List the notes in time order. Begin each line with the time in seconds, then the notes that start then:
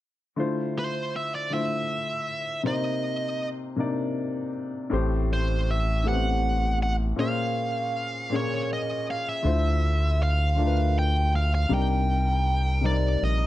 0.36 D3 A3 E4 F4 C5
0.79 C5
1.16 E5
1.35 D5
1.50 D3 A3 E4 F4 C5 E5
2.63 C3 A#3 C4 D#4 C5 D#5
3.76 C3 A#3 D4 D#4 D5
4.90 A1 A2 A3 C4 G4 C5
5.33 C5
5.71 E5
6.04 A2 A3 B3 G4
6.08 B4 F#5
6.12 C4
6.83 F#5
7.16 A#2 A#3 C#4 G#4 C5 F5
8.30 A#2 A#3 C#4 G#4
8.34 C#5
8.73 D#5
9.11 F5
9.29 E5
9.43 D2 D3 A3 E4 F4 C5
10.23 F5
10.56 D3 A3 D4 F4 A#4
10.66 B4
10.99 G5
11.36 F5
11.55 F5
11.69 C2 C3 G3 D4 D#4 A#4
11.74 G5
12.81 C3 G3 C4 D#4 A#4
12.86 D5
13.23 A#1 D#5